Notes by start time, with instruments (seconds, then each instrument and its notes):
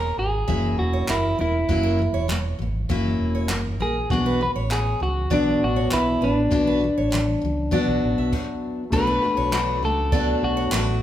Already playing: fingered electric bass E1, steel-string acoustic guitar F#3 A#3 C#5, clean electric guitar A#4
0.18 fingered electric bass G#1, clean electric guitar G#4
0.48 fingered electric bass F#1, steel-string acoustic guitar F#3 A#3 C#4 E4 E5, kick
0.78 fingered electric bass E1, clean electric guitar F#4
0.93 steel-string acoustic guitar C#5
1.08 fingered electric bass F#1, steel-string acoustic guitar F#3 A#3 A#4, clean electric guitar E4, clap
1.38 fingered electric bass E1, steel-string acoustic guitar F#3 A#3 A#4, clean electric guitar E4
1.69 fingered electric bass F#1, steel-string acoustic guitar F#3 A#3 C#4 E4, kick
1.83 steel-string acoustic guitar A#4
1.99 steel-string acoustic guitar F#3 A#3
2.14 fingered electric bass E1, steel-string acoustic guitar C#5
2.28 steel-string acoustic guitar F#3 A#3, clap
2.59 fingered electric bass G#1, steel-string acoustic guitar F#3 A#3
2.89 fingered electric bass F#1, steel-string acoustic guitar F#3 A#3 C#4 E4 E5, kick
3.20 fingered electric bass E1
3.35 steel-string acoustic guitar C#5
3.49 fingered electric bass F#1, steel-string acoustic guitar F#3 A#3 A#4, clap
3.80 fingered electric bass A#1, steel-string acoustic guitar F#3 A#3 A#4, clean electric guitar G#4
4.10 fingered electric bass B1, steel-string acoustic guitar B2 F#3 B3 D4 F#4, clean electric guitar F#4, kick
4.26 steel-string acoustic guitar B4
4.41 steel-string acoustic guitar B2 F#3, clean electric guitar B4
4.56 fingered electric bass A1, steel-string acoustic guitar C#5
4.70 steel-string acoustic guitar B2 F#3, clean electric guitar G#4, clap
5.00 fingered electric bass C#2, steel-string acoustic guitar B2 F#3, clean electric guitar F#4
5.30 fingered electric bass B1, steel-string acoustic guitar B2 F#3 B3 D4 F#4 D5, clean electric guitar D4, kick
5.62 fingered electric bass A1, clean electric guitar F#4
5.76 steel-string acoustic guitar C#5
5.91 fingered electric bass B1, steel-string acoustic guitar B2 F#3 B4, clean electric guitar E4, clap
6.21 fingered electric bass A1, steel-string acoustic guitar B2 F#3 B4, clean electric guitar D4
6.51 fingered electric bass B1, steel-string acoustic guitar B2 F#3 B3 D4 F#4, kick
6.67 steel-string acoustic guitar B4
6.81 steel-string acoustic guitar B2 F#3
6.98 fingered electric bass A1, steel-string acoustic guitar C#5
7.11 steel-string acoustic guitar B2 F#3, clap
7.42 fingered electric bass C#2, steel-string acoustic guitar B2 F#3
7.71 steel-string acoustic guitar B2 F#3 B3 D4 F#4 D5, kick
7.88 fingered electric bass B1
8.03 fingered electric bass A1
8.18 fingered electric bass B1, steel-string acoustic guitar E5
8.33 kick, crash
8.90 fingered electric bass B1, steel-string acoustic guitar B2 F#3 A3 D4 F#4, grand piano A3 D4 F#4, clean electric guitar B4, kick, crash
8.95 grand piano B4
9.07 steel-string acoustic guitar B4
9.22 steel-string acoustic guitar A3 D4 F#4
9.37 fingered electric bass B1, steel-string acoustic guitar C#5
9.52 steel-string acoustic guitar F#3 A3 D4 F#4, clap
9.82 fingered electric bass C#2, steel-string acoustic guitar A3 D4 F#4, clean electric guitar A4
10.12 steel-string acoustic guitar B2 F#3 A3 D4 F#4 D5, kick
10.42 fingered electric bass B1, clean electric guitar F#4
10.57 steel-string acoustic guitar C#5
10.72 fingered electric bass A1, steel-string acoustic guitar F#3 A3 D4 F#4 B4, clap